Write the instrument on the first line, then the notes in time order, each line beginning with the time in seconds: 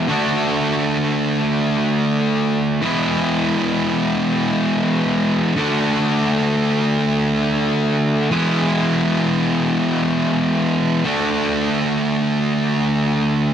distorted electric guitar
Already playing: E4
0.07 D3 A3 D4
0.12 F#4
2.82 E3 G#3 B3 E4
5.56 D3 A3 D4
5.60 F#4
8.31 E3 G#3 B3 E4
11.04 D3 A3 D4 F#4